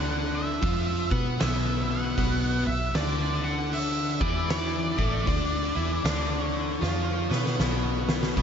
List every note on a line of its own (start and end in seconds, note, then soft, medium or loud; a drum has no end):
0.00 0.59 D2 medium
0.00 0.61 D3 medium
0.00 0.62 D4 loud
0.00 0.30 F#5 loud
0.35 1.11 E5 loud
0.61 1.08 F2 medium
0.61 1.10 F3 medium
0.61 1.10 F4 loud
0.61 kick loud
0.61 open hi-hat medium
1.11 1.38 B2 medium
1.11 1.39 B3 medium
1.11 1.40 B4 loud
1.11 1.40 F#5 loud
1.11 kick loud
1.40 2.14 B1 medium
1.40 2.16 B2 medium
1.40 2.17 B3 loud
1.40 1.86 E5 medium
1.40 snare loud
1.40 open hi-hat medium
1.91 2.66 F#5 loud
2.17 2.64 B1 medium
2.17 2.65 B2 medium
2.17 2.65 B3 medium
2.17 kick medium
2.17 open hi-hat medium
2.67 2.94 B1 medium
2.67 2.90 B2 medium
2.67 2.96 E5 medium
2.95 4.18 D2 medium
2.95 4.20 D3 loud
2.95 4.21 D4 loud
2.95 3.40 D5 medium
2.95 snare loud
2.95 open hi-hat medium
3.44 3.71 F#5 medium
3.73 4.23 E5 medium
3.73 open hi-hat medium
4.20 4.95 E2 medium
4.20 4.97 E3 medium
4.20 4.98 E4 medium
4.20 4.48 D5 medium
4.20 kick loud
4.50 6.42 D5 medium
4.50 snare loud
4.50 open hi-hat medium
4.98 5.26 A1 medium
4.98 5.26 A2 medium
4.98 5.27 A3 medium
4.98 kick medium
5.26 5.73 D2 medium
5.26 5.75 D3 medium
5.26 5.75 D4 loud
5.26 kick loud
5.26 open hi-hat medium
5.75 6.04 E2 medium
5.75 6.04 E3 medium
5.75 6.04 E4 medium
6.04 6.79 D2 medium
6.04 6.80 D3 medium
6.04 6.81 D4 loud
6.04 snare loud
6.04 open hi-hat medium
6.42 7.57 C#5 medium
6.81 7.28 F2 medium
6.81 7.29 F3 medium
6.81 7.30 F4 loud
6.81 snare medium
7.30 7.58 B2 medium
7.30 7.59 B3 medium
7.30 7.60 B4 medium
7.30 snare medium
7.46 snare medium
7.59 8.34 B1 medium
7.59 8.35 B2 medium
7.59 8.36 B3 loud
7.59 snare medium
8.09 snare medium
8.23 snare medium
8.36 8.42 B1 medium
8.36 8.42 B2 medium
8.36 8.42 B3 medium
8.36 kick loud
8.36 open hi-hat medium